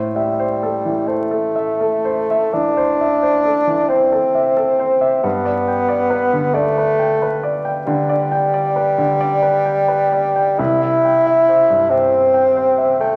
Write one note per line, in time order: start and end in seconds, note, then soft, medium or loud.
0.00 2.51 A2 medium
0.00 0.30 C5 soft
0.16 1.09 G3 medium
0.16 0.52 E5 soft
0.39 0.76 C5 soft
0.63 0.99 A4 soft
0.85 1.22 E3 soft
1.08 2.55 A3 medium
1.08 1.46 C5 soft
1.31 1.70 A4 soft
1.56 1.95 E5 soft
1.81 2.20 A4 soft
2.05 2.44 C5 soft
2.31 2.68 E5 soft
2.53 2.91 E3 soft
2.53 3.90 D4 loud
2.77 3.14 C5 soft
3.01 3.37 E5 soft
3.23 3.59 C5 soft
3.45 3.81 A4 soft
3.67 4.03 E3 soft
3.89 5.23 C4 medium
3.89 4.26 C5 soft
4.12 4.48 A4 soft
4.35 4.71 E5 soft
4.57 4.93 A4 soft
4.79 5.15 C5 soft
5.01 5.24 E5 soft
5.23 7.83 G2 medium
5.23 6.56 B3 medium
5.45 5.80 D5 soft
5.68 6.03 G5 soft
5.88 6.24 D5 soft
6.10 6.46 B4 medium
6.33 6.68 D3 soft
6.55 7.60 A3 loud
6.55 6.90 D5 medium
6.78 7.13 B4 soft
6.99 7.35 G5 soft
7.22 7.57 B4 soft
7.43 7.78 D5 soft
7.65 8.00 G5 medium
7.87 8.22 D3 medium
7.87 10.60 G3 loud
8.09 8.45 D5 soft
8.32 8.67 G5 soft
8.54 8.89 D5 soft
8.76 9.11 B4 soft
8.98 9.33 D3 soft
9.21 9.56 D5 medium
9.42 9.79 B4 soft
9.65 10.03 G5 soft
9.88 10.26 B4 soft
10.12 10.50 D5 soft
10.36 10.59 G5 soft
10.59 13.16 C2 medium
10.59 11.92 E4 loud
10.81 11.17 E5 soft
11.05 11.39 G5 soft
11.27 11.60 E5 medium
11.49 11.82 C5 soft
11.70 12.04 G2 soft
11.90 12.99 C4 medium
11.90 12.25 E5 soft
12.13 12.47 C5 soft
12.34 12.69 G5 soft
12.56 12.91 C5 soft
12.78 13.13 E5 soft
13.00 13.16 A3 medium
13.00 13.16 G5 soft